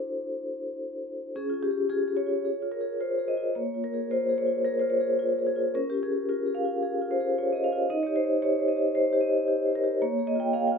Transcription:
0.00 1.28 D4 medium
0.00 1.29 E4 soft
0.00 1.29 F#4 soft
0.00 0.71 A4 medium
0.00 0.75 C5 medium
1.36 2.42 C#4 medium
1.36 1.49 G#4 medium
1.50 1.52 F4 medium
1.54 1.83 F4 soft
1.63 1.90 G4 medium
1.71 1.89 G#4 soft
1.89 2.19 F4 soft
1.89 2.07 G#4 medium
2.08 2.37 G#4 soft
2.17 2.72 C#5 medium
2.26 2.56 F4 soft
2.45 2.75 G#4 soft
2.62 2.93 F4 soft
2.72 3.00 A#4 medium
2.81 3.11 G#4 soft
3.00 3.30 F4 soft
3.00 3.29 C5 medium
3.18 3.48 G#4 soft
3.28 3.56 D#5 medium
3.37 3.56 F4 soft
3.55 4.62 A#3 medium
3.55 3.83 C#5 medium
3.74 4.03 F4 soft
3.84 4.11 A#4 medium
3.94 4.22 G#4 soft
4.11 4.40 F4 soft
4.11 4.38 C5 medium
4.29 4.58 G#4 soft
4.38 4.65 C#5 medium
4.47 4.76 F4 soft
4.65 4.94 G#4 soft
4.65 4.78 A#4 medium
4.79 5.11 F4 soft
4.79 4.93 C5 medium
4.90 5.46 C#5 medium
5.01 5.30 G#4 soft
5.19 5.49 F4 medium
5.38 5.46 G#4 soft
5.47 5.74 G#4 medium
5.56 5.74 F4 soft
5.75 6.79 C#4 medium
5.75 5.88 A#4 medium
5.90 6.02 G4 medium
5.94 6.22 F4 soft
6.03 6.11 G#4 medium
6.12 6.40 G#4 soft
6.29 6.57 F4 soft
6.29 6.55 A#4 medium
6.46 6.75 G#4 soft
6.55 7.09 F5 medium
6.65 6.93 F4 soft
6.83 7.11 G#4 soft
7.02 7.30 F4 medium
7.11 7.37 C5 medium
7.21 7.48 G#4 soft
7.38 7.66 F4 soft
7.38 7.51 C#5 medium
7.53 7.83 G#4 soft
7.53 7.65 D#5 medium
7.64 7.90 F5 medium
7.72 7.90 F4 soft
7.90 8.92 D#4 medium
7.90 8.03 D#5 medium
8.03 8.34 G4 soft
8.03 8.16 C#5 medium
8.16 8.24 C5 medium
8.25 8.52 C5 soft
8.42 8.70 G4 soft
8.42 8.68 C#5 medium
8.60 8.88 C5 soft
8.68 8.95 D#5 medium
8.77 9.06 G4 soft
8.95 9.22 C5 medium
9.13 9.42 G4 medium
9.21 9.75 D#5 medium
9.30 9.59 C5 soft
9.48 9.77 G4 medium
9.66 9.95 C5 soft
9.75 10.02 A#4 medium
9.84 10.02 G4 medium
10.02 10.78 A#3 medium
10.02 10.28 C#5 medium
10.19 10.47 G#4 soft
10.27 10.41 D#5 medium
10.35 10.64 F4 soft
10.40 10.54 G5 medium
10.53 10.78 G#4 medium
10.53 10.67 F5 loud
10.67 10.78 G5 medium
10.72 10.78 F4 soft

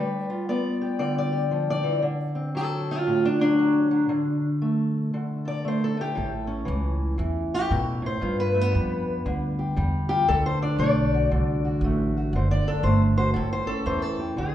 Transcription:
0.00 2.01 G3 medium
0.00 0.29 D4 soft
0.00 0.48 B4 medium
0.30 2.02 F4 soft
0.49 1.51 B3 medium
0.49 0.98 D5 loud
0.81 1.31 G4 medium
0.99 2.01 D3 medium
0.99 1.17 D5 loud
1.18 1.69 D5 medium
1.32 2.01 G4 soft
1.51 1.83 F3 medium
1.70 1.98 D5 loud
1.83 2.03 E3 medium
2.02 4.07 D3 medium
2.35 3.24 C4 soft
2.55 3.38 F#3 medium
2.55 2.90 A4 loud
2.91 3.25 F4 loud
3.07 4.08 A2 medium
3.25 3.40 D4 loud
3.39 3.58 F#3 soft
3.39 4.45 D4 loud
3.59 3.90 F#3 medium
3.91 4.08 F#3 medium
4.09 5.12 D3 medium
4.62 5.64 A3 medium
5.14 6.14 D3 medium
5.45 5.82 A4 soft
5.45 5.65 D5 loud
5.65 5.96 A3 medium
5.65 5.84 C5 medium
5.84 6.00 A4 medium
5.97 6.47 A3 soft
5.97 6.28 G4 loud
6.15 6.67 A1 medium
6.15 8.01 A2 medium
6.15 7.70 A4 medium
6.47 8.19 C#4 soft
6.65 7.18 C#2 loud
6.65 7.17 E3 medium
7.18 7.69 E2 medium
7.18 7.69 E3 medium
7.54 7.71 G4 loud
7.69 8.21 A2 medium
7.69 8.03 B2 medium
7.69 8.06 A4 loud
8.02 8.21 A2 medium
8.06 8.39 C5 loud
8.21 10.25 G2 medium
8.21 8.72 G2 medium
8.21 10.08 F4 medium
8.40 9.42 B4 loud
8.54 8.61 A3 soft
8.61 10.26 B3 soft
8.71 9.24 F2 medium
8.71 9.75 G3 medium
9.26 9.75 D2 medium
9.26 10.26 D3 medium
9.59 10.08 G4 soft
9.76 10.27 E2 loud
9.76 10.25 G3 medium
10.09 10.26 F4 soft
10.09 10.27 G4 loud
10.28 10.78 D2 loud
10.28 11.30 D3 medium
10.28 10.45 A4 loud
10.46 10.62 C5 loud
10.62 12.31 D4 medium
10.62 10.78 D5 loud
10.78 11.28 B1 loud
10.78 11.84 A3 medium
10.78 11.81 D5 loud
11.14 11.64 F#4 medium
11.31 11.80 C2 medium
11.31 12.31 D3 medium
11.65 12.15 F#4 soft
11.81 12.31 A1 loud
11.81 12.86 A3 medium
12.17 12.32 F#4 soft
12.33 12.62 F#1 medium
12.33 13.34 D3 medium
12.33 12.51 C5 medium
12.51 12.67 D5 loud
12.67 13.34 D4 soft
12.67 12.84 A4 loud
12.83 13.33 G1 loud
12.83 13.33 A3 medium
12.83 13.01 C5 medium
13.18 13.34 F#4 medium
13.18 13.33 C5 loud
13.34 13.85 A1 medium
13.34 14.35 A2 medium
13.34 13.51 A4 loud
13.53 13.69 C5 loud
13.67 14.35 C#4 medium
13.67 14.01 A4 loud
13.86 14.35 E2 loud
13.86 14.37 E3 medium
13.86 14.02 C5 loud
14.02 14.36 A4 loud
14.19 14.35 G4 medium
14.37 14.55 D2 medium
14.37 14.55 D3 medium
14.37 14.55 G#4 loud

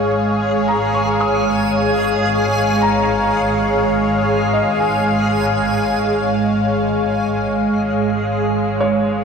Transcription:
0.00 9.24 G#1 medium
0.00 9.24 G#3 medium
0.00 9.24 G#4 medium
0.00 9.24 C#5 medium
0.00 9.24 F5 medium
0.00 9.24 F5 soft
0.00 9.24 G#5 medium
0.68 1.81 A#5 medium
0.94 2.05 C#6 soft
1.21 2.29 D#6 soft
2.82 3.95 A#5 medium
4.53 5.66 D#5 medium
4.80 5.90 G#5 soft
8.80 9.24 C#5 medium

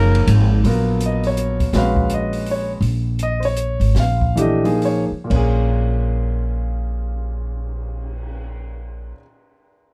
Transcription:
0.00 0.27 F#1 medium
0.00 0.57 F3 medium
0.00 0.57 A#3 medium
0.00 0.57 D#4 medium
0.00 0.57 G#4 medium
0.00 0.29 A#4 medium
0.00 0.58 C#5 medium
0.15 ride soft
0.27 0.63 G#1 medium
0.27 hi-hat pedal medium
0.27 ride medium
0.64 1.69 A#1 medium
0.64 1.66 F#3 medium
0.64 1.66 B3 medium
0.64 1.66 F4 medium
0.64 1.66 A#4 medium
0.64 open hi-hat soft
1.00 closed hi-hat soft
1.06 1.26 D#5 medium
1.23 1.72 C#5 medium
1.23 open hi-hat soft
1.37 closed hi-hat medium
1.60 kick soft
1.60 open hi-hat soft
1.73 2.78 A#1 medium
1.73 2.74 G#3 medium
1.73 2.75 C#4 medium
1.73 2.75 F#4 medium
1.73 2.75 B4 medium
1.73 snare soft
1.73 open hi-hat soft
1.78 2.10 F5 medium
1.96 kick medium
2.10 closed hi-hat medium
2.14 2.46 D#5 medium
2.33 open hi-hat soft
2.46 open hi-hat soft
2.51 2.71 C#5 medium
2.81 3.76 A#1 medium
2.81 open hi-hat soft
3.19 3.44 D#5 medium
3.19 closed hi-hat soft
3.40 3.42 C5 medium
3.40 open hi-hat soft
3.45 3.93 C#5 medium
3.56 closed hi-hat soft
3.80 3.94 G#1 medium
3.80 open hi-hat soft
3.95 5.08 A#1 medium
3.95 snare soft
3.95 open hi-hat soft
4.00 4.36 F5 medium
4.21 kick medium
4.36 4.61 E3 medium
4.36 4.62 A3 medium
4.36 4.62 D4 medium
4.36 4.63 G4 medium
4.36 closed hi-hat soft
4.41 4.81 D#5 medium
4.64 5.06 F3 medium
4.64 5.06 A#3 medium
4.64 5.06 D#4 medium
4.64 5.07 G#4 medium
4.64 open hi-hat soft
4.82 5.03 C#5 medium
4.82 open hi-hat soft
5.11 muted upright bass stroke soft
5.24 9.10 A#2 medium
5.24 9.12 A#3 medium
5.30 9.11 A#1 medium
5.30 9.16 C#4 medium
5.30 9.19 F4 medium
5.30 kick medium
5.30 crash medium
5.36 9.21 G#4 medium
5.63 cymbal swell soft

